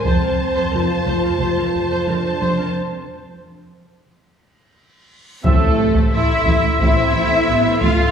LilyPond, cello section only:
\new Staff \with { instrumentName = "Cello section" } { \clef bass \time 4/4 \key f \mixolydian \tempo 4 = 89 f,16 f,16 r16 f,16 f,16 f,16 f,16 f,16 f,16 f,16 f,16 f,16 f,16 f,16 f,16 f,16 | r1 | \key a \minor a4 e'4 e'4. f'8 | }